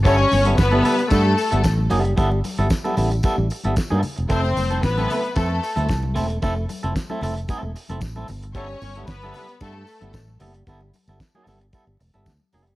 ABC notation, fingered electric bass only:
X:1
M:4/4
L:1/16
Q:1/4=113
K:Glyd
V:1 name="Fingered electric bass" clef=bass
G,,,2 G,,,2 G,,,2 z2 G,,2 z G,,, A,,,2 F,,,2 | G,,,2 z G,,, z2 A,,,2 z A,,, z G,,, z G,, z E,,, | =F,,,2 F,,,2 A,,,2 z2 =F,,2 z D,, =C,,2 E,,,2 | =F,,,2 z F,,, z2 F,,,2 z E,,, z F,,, A,,,2 G,,,2- |
G,,,2 G,,,2 G,,,2 z2 G,,2 z G,,, A,,,2 F,,,2 | G,,,2 z G,,, z2 G,,,2 z G,,, E,,, G,,, D,, z =F,,, ^F,,, |]